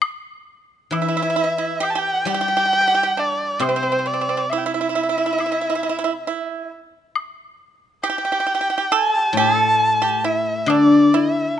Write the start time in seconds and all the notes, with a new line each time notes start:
0.02 high woodblock
0.91 E3 E4 E5, high woodblock
1.02 E4
1.08 E4
1.17 E4
1.22 E4
1.30 E4
1.36 E4
1.44 E4
1.58 E4
1.80 G4 G5, high woodblock
1.90 A5
1.95 G4 G5
2.25 G3 G4 G5
2.34 G4
2.41 G4
2.48 G4
2.57 G4
2.66 G4
2.73 G4
2.81 G4
2.88 G4
2.94 G4
3.03 G4
3.17 D4 D5
3.59 C3 C4 C5, high woodblock
3.69 C4
3.76 C4
3.83 C4
3.92 C4
3.99 C4
4.06 C4 D5
4.14 C4
4.21 C4
4.29 C4
4.37 C4
4.50 E4 E5, high woodblock
4.58 G5
4.66 E4 E5
4.74 E4
4.81 E4
4.89 E4
4.95 E4
5.03 E4
5.09 E4
5.18 E4
5.26 E4
5.33 E4
5.38 E4, high woodblock
5.46 E4
5.52 E4
5.61 E4
5.70 E4
5.75 E4
5.83 E4
5.89 E4
5.99 E4
6.04 E4
6.27 E4
7.16 high woodblock
8.03 G4 G5, high woodblock
8.10 G4
8.18 G4
8.25 G4
8.32 G4
8.40 G4
8.47 G4
8.55 G4
8.61 G4
8.70 G4
8.78 G4
8.92 A4 A5, high woodblock
9.18 G4
9.33 A2
9.37 G4 A5
9.56 A4
10.02 G4
10.24 E4 E5
10.66 D3 D4 D5, high woodblock
11.14 E4 E5